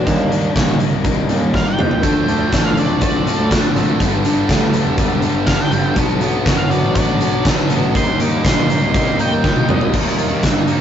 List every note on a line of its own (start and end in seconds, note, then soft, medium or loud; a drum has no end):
0.00 0.52 D4 medium
0.06 0.17 D#2 loud
0.06 0.30 D#3 medium
0.06 0.30 G3 medium
0.06 0.31 A#3 medium
0.06 0.32 D#4 loud
0.06 kick loud
0.06 closed hi-hat medium
0.18 0.48 D#2 medium
0.31 0.54 D#3 medium
0.31 0.54 G3 medium
0.31 0.55 A#3 medium
0.31 0.55 D#4 medium
0.31 closed hi-hat medium
0.55 0.85 A#1 medium
0.55 0.79 D#3 medium
0.55 0.79 G3 medium
0.55 0.80 A#3 medium
0.55 0.80 D#4 medium
0.55 kick loud
0.55 snare loud
0.55 closed hi-hat medium
0.80 1.03 D#3 medium
0.80 1.04 G3 medium
0.80 1.04 A#3 medium
0.80 1.05 D#4 medium
0.80 closed hi-hat medium
0.91 1.31 C2 medium
1.04 1.28 D#3 medium
1.04 1.29 G3 loud
1.04 1.29 A#3 loud
1.04 1.30 D#4 loud
1.04 kick loud
1.04 closed hi-hat medium
1.29 1.53 D#3 medium
1.29 1.53 G3 medium
1.29 1.54 A#3 medium
1.29 1.54 D#4 medium
1.29 closed hi-hat medium
1.42 1.61 D#2 medium
1.54 1.76 D#3 medium
1.54 1.76 G3 medium
1.54 1.78 A#3 medium
1.54 1.78 D#4 medium
1.54 1.67 F5 medium
1.54 kick loud
1.54 snare medium
1.68 2.62 G5 medium
1.77 1.98 D#2 medium
1.77 2.01 D#3 medium
1.77 2.01 G3 medium
1.77 2.02 A#3 medium
1.77 2.02 D#4 medium
1.77 mid tom medium
1.91 floor tom medium
2.03 2.13 D2 loud
2.03 2.27 D3 loud
2.03 2.27 F3 loud
2.03 2.28 A3 medium
2.03 2.29 D4 medium
2.03 kick loud
2.03 closed hi-hat loud
2.16 2.45 D2 medium
2.28 2.50 D3 medium
2.28 2.51 F3 medium
2.28 2.51 A3 medium
2.28 2.52 D4 medium
2.28 closed hi-hat medium
2.51 2.82 A1 medium
2.51 2.75 D3 medium
2.51 2.76 F3 medium
2.51 2.76 A3 medium
2.51 2.78 D4 medium
2.51 kick loud
2.51 snare loud
2.51 closed hi-hat loud
2.65 2.77 F5 medium
2.77 3.00 D3 medium
2.77 3.01 F3 medium
2.77 3.01 A3 medium
2.77 3.02 D4 medium
2.77 3.02 D5 medium
2.77 closed hi-hat medium
2.89 3.29 C2 medium
3.01 3.25 D3 medium
3.01 3.26 F3 medium
3.01 3.26 A3 loud
3.01 3.28 D4 loud
3.01 3.50 D5 loud
3.01 kick loud
3.01 closed hi-hat medium
3.26 3.49 D3 medium
3.26 3.49 F3 medium
3.26 3.50 A3 medium
3.26 3.51 D4 medium
3.26 closed hi-hat medium
3.38 3.58 D2 medium
3.50 3.74 D3 medium
3.50 3.75 F3 medium
3.50 3.76 A3 medium
3.50 3.77 D4 medium
3.50 kick loud
3.50 snare loud
3.50 closed hi-hat medium
3.75 3.95 G#1 medium
3.75 3.99 D3 medium
3.75 3.99 F3 medium
3.75 3.99 A3 medium
3.75 4.01 D4 loud
3.75 closed hi-hat medium
4.00 4.10 G1 loud
4.00 4.23 G2 loud
4.00 4.24 D3 loud
4.00 4.25 G3 loud
4.00 4.26 B3 loud
4.00 4.26 D4 loud
4.00 kick loud
4.00 closed hi-hat medium
4.12 4.42 G1 medium
4.25 4.48 G2 medium
4.25 4.49 D3 medium
4.25 4.49 G3 loud
4.25 4.50 B3 medium
4.25 4.51 D4 medium
4.25 closed hi-hat medium
4.49 4.78 D2 medium
4.49 4.73 G2 medium
4.49 4.73 D3 medium
4.49 4.73 G3 medium
4.49 4.75 B3 medium
4.49 4.75 D4 medium
4.49 kick loud
4.49 snare loud
4.49 closed hi-hat medium
4.73 4.97 G2 medium
4.73 4.97 D3 medium
4.73 4.98 G3 medium
4.73 4.99 B3 medium
4.73 4.99 D4 medium
4.73 closed hi-hat medium
4.86 5.25 E1 medium
4.98 5.21 G2 medium
4.98 5.22 D3 loud
4.98 5.23 G3 loud
4.98 5.23 B3 loud
4.98 5.24 D4 loud
4.98 kick loud
4.98 closed hi-hat medium
5.22 5.45 G2 medium
5.22 5.46 D3 medium
5.22 5.46 G3 medium
5.22 5.46 B3 medium
5.22 5.47 D4 medium
5.22 closed hi-hat medium
5.34 5.54 G1 medium
5.47 5.70 G2 medium
5.47 5.71 D3 medium
5.47 5.71 G3 medium
5.47 5.71 B3 medium
5.47 5.72 D4 medium
5.47 5.59 F5 loud
5.47 kick loud
5.47 snare loud
5.47 closed hi-hat medium
5.59 5.95 G5 medium
5.59 snare soft
5.71 5.91 G1 loud
5.71 5.95 G2 medium
5.71 5.95 D3 medium
5.71 5.95 G3 medium
5.71 5.96 B3 medium
5.71 5.96 D4 loud
5.71 closed hi-hat medium
5.96 6.06 B1 loud
5.96 6.19 B2 loud
5.96 6.20 F#3 medium
5.96 6.20 B3 loud
5.96 6.21 D4 loud
5.96 kick loud
5.96 closed hi-hat loud
6.08 6.38 B1 medium
6.20 6.44 B2 medium
6.20 6.45 F#3 medium
6.20 6.45 B3 medium
6.20 6.45 D4 medium
6.20 closed hi-hat medium
6.45 6.76 F#2 medium
6.45 6.68 B2 medium
6.45 6.69 F#3 medium
6.45 6.69 B3 medium
6.45 6.70 D4 medium
6.45 kick loud
6.45 snare loud
6.45 closed hi-hat medium
6.57 6.70 F5 medium
6.69 6.94 B2 medium
6.69 6.94 F#3 medium
6.69 6.95 B3 medium
6.69 6.95 D4 medium
6.69 6.94 D5 medium
6.69 closed hi-hat medium
6.83 7.23 A1 medium
6.95 7.19 B2 loud
6.95 7.20 F#3 loud
6.95 7.20 B3 loud
6.95 7.21 D4 loud
6.95 7.43 D5 loud
6.95 kick loud
6.95 closed hi-hat loud
7.20 7.44 B2 medium
7.20 7.45 F#3 medium
7.20 7.46 B3 medium
7.20 7.46 D4 medium
7.20 closed hi-hat medium
7.32 7.52 B1 medium
7.45 7.69 B2 medium
7.45 7.70 F#3 medium
7.45 7.70 B3 medium
7.45 7.70 D4 medium
7.45 kick loud
7.45 snare loud
7.45 closed hi-hat loud
7.70 7.90 A1 medium
7.70 7.93 B2 medium
7.70 7.94 F#3 medium
7.70 7.94 B3 medium
7.70 7.94 D4 medium
7.70 closed hi-hat medium
7.95 8.05 D#2 loud
7.95 8.20 D#3 medium
7.95 8.20 G3 medium
7.95 8.21 A#3 loud
7.95 8.21 D#4 loud
7.95 8.20 C6 loud
7.95 kick loud
7.95 closed hi-hat medium
8.07 8.37 D#2 medium
8.20 8.44 D#3 medium
8.20 8.44 G3 medium
8.20 8.44 A#3 medium
8.20 8.45 D#4 medium
8.20 8.45 D6 medium
8.20 closed hi-hat medium
8.45 8.74 A#1 loud
8.45 8.69 D#3 medium
8.45 8.69 G3 medium
8.45 8.70 A#3 medium
8.45 8.70 D#4 medium
8.45 9.17 C6 loud
8.45 kick loud
8.45 snare loud
8.45 closed hi-hat loud
8.70 8.94 D#3 loud
8.70 8.94 G3 medium
8.70 8.95 A#3 loud
8.70 8.95 D#4 medium
8.70 closed hi-hat medium
8.82 9.21 C2 medium
8.94 9.18 D#3 medium
8.94 9.19 G3 medium
8.94 9.19 A#3 medium
8.94 9.20 D#4 loud
8.94 kick loud
8.94 closed hi-hat medium
9.19 9.43 D#3 medium
9.19 9.44 G3 medium
9.19 9.45 A#3 medium
9.19 9.45 D#4 medium
9.19 9.68 G5 medium
9.19 closed hi-hat medium
9.31 9.51 D#2 medium
9.44 9.67 D#3 medium
9.44 9.68 G3 medium
9.44 9.68 A#3 medium
9.44 9.69 D#4 loud
9.44 kick loud
9.44 snare medium
9.56 high tom medium
9.68 9.89 C2 loud
9.68 9.92 D#3 medium
9.68 9.92 G3 loud
9.68 9.93 A#3 loud
9.68 9.93 D#4 loud
9.68 9.94 D#5 medium
9.68 mid tom loud
9.81 floor tom medium
9.93 10.04 D#2 loud
9.93 10.67 D#3 medium
9.93 10.67 G3 medium
9.93 10.67 A#3 medium
9.93 10.66 D#4 medium
9.93 kick loud
9.93 crash loud
10.19 10.29 D#2 medium
10.19 closed hi-hat medium
10.31 10.41 D#2 medium
10.43 10.73 G2 loud
10.43 kick loud
10.43 snare loud
10.43 closed hi-hat loud
10.68 10.81 D#3 medium
10.68 10.81 G3 medium
10.68 10.81 A#3 medium
10.68 10.81 D#4 medium
10.68 closed hi-hat medium